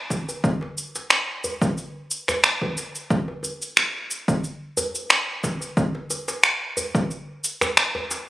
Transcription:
0.10 kick medium
0.10 djembe slap medium
0.10 shaker medium
0.29 djembe tone medium
0.29 shaker soft
0.44 kick loud
0.44 shaker soft
0.61 djembe slap soft
0.61 djembe tone medium
0.78 shaker medium
0.95 djembe slap soft
0.95 shaker soft
1.10 finger snap medium
1.10 shaker soft
1.44 djembe bass medium
1.44 shaker medium
1.62 kick loud
1.62 djembe tone medium
1.62 shaker soft
1.78 shaker soft
2.11 shaker medium
2.28 finger snap soft
2.28 djembe bass medium
2.28 shaker soft
2.44 finger snap loud
2.44 shaker soft
2.62 kick medium
2.62 djembe bass medium
2.77 djembe slap medium
2.77 shaker medium
2.95 shaker soft
3.10 kick loud
3.10 shaker soft
3.28 djembe tone medium
3.43 djembe tone medium
3.43 shaker medium
3.62 shaker soft
3.77 finger snap loud
3.77 shaker soft
4.11 shaker medium
4.28 kick loud
4.28 shaker soft
4.44 shaker soft
4.77 djembe bass medium
4.77 shaker medium
4.95 shaker soft
5.10 finger snap loud
5.10 shaker soft
5.44 kick medium
5.44 djembe slap medium
5.44 shaker medium
5.61 djembe tone medium
5.61 shaker soft
5.77 kick loud
5.77 shaker soft
5.95 djembe slap soft
5.95 djembe tone medium
6.10 djembe tone medium
6.10 shaker medium
6.28 djembe slap medium
6.28 shaker soft
6.43 finger snap loud
6.43 shaker soft
6.77 djembe bass medium
6.77 shaker medium
6.95 kick loud
6.95 djembe tone medium
6.95 shaker soft
7.11 shaker soft
7.44 shaker medium
7.61 finger snap soft
7.61 djembe bass medium
7.61 shaker soft
7.77 finger snap loud
7.77 shaker soft
7.95 djembe bass medium
8.11 djembe slap medium
8.11 shaker medium

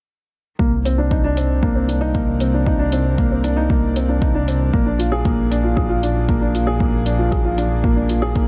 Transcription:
0.59 4.71 C2 medium
0.59 4.73 D#3 medium
0.59 0.72 A#3 medium
0.59 kick medium
0.80 6.39 A#4 medium
0.85 0.93 C4 medium
0.85 closed hi-hat soft
0.98 6.22 C4 medium
0.98 1.06 D4 medium
1.11 1.19 D#4 medium
1.11 kick medium
1.24 1.37 D4 medium
1.37 1.49 C4 medium
1.37 closed hi-hat soft
1.62 1.75 A#3 medium
1.62 8.48 D5 medium
1.62 kick medium
1.75 1.88 C4 medium
1.88 1.96 D4 medium
1.88 closed hi-hat medium
2.01 2.14 D#4 medium
2.14 2.27 A#3 medium
2.14 kick medium
2.40 2.48 C4 medium
2.40 closed hi-hat medium
2.54 2.61 D4 medium
2.67 2.74 D#4 medium
2.67 kick medium
2.79 2.92 D4 medium
2.92 3.05 C4 medium
2.92 closed hi-hat medium
3.18 3.31 A#3 medium
3.18 kick medium
3.31 3.44 C4 medium
3.44 3.51 D4 medium
3.44 closed hi-hat medium
3.56 3.69 D#4 medium
3.70 3.82 A#3 medium
3.70 kick medium
3.96 4.03 C4 medium
3.96 closed hi-hat medium
4.09 4.16 D4 medium
4.22 4.29 D#4 medium
4.22 kick medium
4.35 4.47 D4 medium
4.48 4.60 C4 medium
4.48 closed hi-hat medium
4.73 8.48 A#1 medium
4.73 8.48 F3 medium
4.73 4.86 A#3 medium
4.73 kick medium
4.86 8.48 A#3 medium
4.86 4.98 D4 medium
4.99 5.06 F4 medium
4.99 closed hi-hat medium
5.12 5.24 G#4 medium
5.25 5.38 A#3 medium
5.25 kick loud
5.51 5.58 D4 medium
5.51 closed hi-hat medium
5.63 5.71 F4 medium
5.63 8.48 G#4 medium
5.77 5.84 G#4 medium
5.77 kick medium
5.89 6.02 F4 medium
6.02 6.15 D4 medium
6.02 closed hi-hat medium
6.28 6.41 A#3 medium
6.28 kick medium
6.41 6.54 D4 medium
6.54 6.62 F4 medium
6.54 closed hi-hat medium
6.67 6.80 G#4 medium
6.80 6.92 A#3 medium
6.80 kick medium
7.06 7.13 D4 medium
7.06 closed hi-hat medium
7.18 7.26 F4 medium
7.32 7.39 G#4 medium
7.32 kick medium
7.44 7.57 F4 medium
7.58 7.70 D4 medium
7.58 closed hi-hat medium
7.83 7.96 A#3 medium
7.83 kick medium
7.96 8.09 D4 medium
8.09 8.17 F4 medium
8.09 closed hi-hat medium
8.22 8.35 G#4 medium
8.35 8.48 A#3 medium
8.35 kick medium

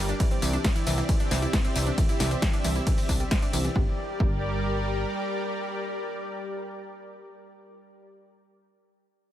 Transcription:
0.00 0.13 G1 loud
0.00 0.16 G3 medium
0.00 0.16 G4 medium
0.00 0.16 A#4 medium
0.00 3.72 D5 medium
0.09 0.20 D4 medium
0.09 closed hi-hat medium
0.09 tambourine soft
0.20 0.25 E3 loud
0.20 3.72 C4 medium
0.20 3.72 G4 medium
0.20 3.72 E5 medium
0.20 kick loud
0.20 closed hi-hat medium
0.20 ride medium
0.20 tambourine soft
0.31 0.39 C4 medium
0.31 closed hi-hat medium
0.42 0.57 C2 loud
0.42 0.53 E3 medium
0.42 open hi-hat loud
0.42 tambourine medium
0.53 0.58 D4 medium
0.53 closed hi-hat medium
0.53 tambourine soft
0.64 0.69 E3 loud
0.64 kick loud
0.64 snare loud
0.64 closed hi-hat loud
0.64 ride medium
0.64 tambourine soft
0.76 0.80 E4 loud
0.76 closed hi-hat medium
0.76 tambourine soft
0.87 1.02 C2 loud
0.87 0.91 E3 loud
0.87 open hi-hat loud
0.87 tambourine medium
0.98 1.05 E3 medium
0.98 closed hi-hat medium
0.98 tambourine soft
1.09 1.13 E3 medium
1.09 kick loud
1.09 closed hi-hat loud
1.09 ride medium
1.09 tambourine soft
1.20 1.27 D4 medium
1.20 closed hi-hat medium
1.20 tambourine soft
1.31 1.46 C2 medium
1.31 1.39 E3 loud
1.31 snare medium
1.31 open hi-hat loud
1.31 tambourine medium
1.42 1.47 E4 medium
1.42 closed hi-hat medium
1.42 tambourine soft
1.53 1.58 E3 medium
1.53 kick loud
1.53 snare loud
1.53 closed hi-hat loud
1.53 ride medium
1.53 tambourine soft
1.64 1.69 C4 loud
1.64 closed hi-hat medium
1.64 tambourine soft
1.76 1.91 C2 loud
1.76 1.86 E3 medium
1.76 open hi-hat loud
1.76 tambourine medium
1.87 1.97 D4 medium
1.87 closed hi-hat medium
1.87 tambourine soft
1.98 2.02 E3 medium
1.98 kick loud
1.98 closed hi-hat loud
1.98 ride medium
1.98 tambourine soft
2.09 2.20 E4 medium
2.09 closed hi-hat medium
2.09 tambourine soft
2.20 2.35 C2 loud
2.20 2.31 E3 medium
2.20 snare medium
2.20 open hi-hat loud
2.20 tambourine medium
2.31 2.36 C4 medium
2.31 closed hi-hat medium
2.31 tambourine soft
2.42 2.47 E3 medium
2.42 kick loud
2.42 snare loud
2.42 closed hi-hat loud
2.42 ride medium
2.42 tambourine soft
2.53 2.61 D4 medium
2.53 closed hi-hat medium
2.53 tambourine soft
2.64 2.79 C2 loud
2.64 2.72 E3 medium
2.64 open hi-hat loud
2.64 tambourine medium
2.76 2.86 E4 medium
2.76 closed hi-hat medium
2.76 tambourine soft
2.87 2.97 E3 medium
2.87 kick loud
2.87 closed hi-hat loud
2.87 ride medium
2.87 tambourine soft
2.98 3.08 C4 medium
2.98 open hi-hat medium
2.98 tambourine soft
3.09 3.24 C2 medium
3.09 3.20 D4 medium
3.09 kick medium
3.09 open hi-hat loud
3.09 tambourine medium
3.20 3.28 G3 medium
3.20 closed hi-hat medium
3.20 tambourine soft
3.31 3.42 C5 medium
3.31 kick loud
3.31 snare loud
3.31 closed hi-hat loud
3.31 ride medium
3.31 tambourine soft
3.42 3.53 D4 medium
3.42 closed hi-hat medium
3.42 tambourine soft
3.53 3.68 C2 medium
3.53 3.61 E3 medium
3.53 open hi-hat loud
3.53 tambourine medium
3.64 3.72 E3 medium
3.64 closed hi-hat medium
3.64 tambourine soft
3.76 3.88 G1 loud
3.76 8.07 G3 medium
3.76 3.88 G3 loud
3.76 8.07 G4 medium
3.76 8.07 A#4 medium
3.76 8.07 D5 medium
3.76 kick loud
4.20 5.05 G1 loud
4.20 4.32 G3 medium
4.20 kick loud

